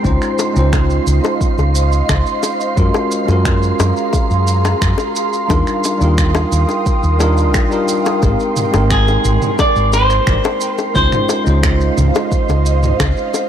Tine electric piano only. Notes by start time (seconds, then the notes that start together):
0.03 G#3 C#4 D#4 F4 C5
0.53 G#3 C#4 D#4
0.58 F4 C5
2.76 G#3 C#4 F4 F#4 A#4
3.25 G#3 C#4 F4
3.30 F#4 A#4
5.48 G3 D4 D#4 F4 A#4
5.98 G3 D4 D#4
6.03 F4 A#4
7.19 G3 D4 D#4 F4 A#4
7.70 G3 D4 D#4 F4 A#4
8.22 G#3 C4 D#4 G4 A#4
8.71 G#3 C4 D#4
8.76 A#4 G5
10.94 G#3 C#4 D#4 F4 C5
11.44 G#3 C#4 D#4
11.48 F4 C5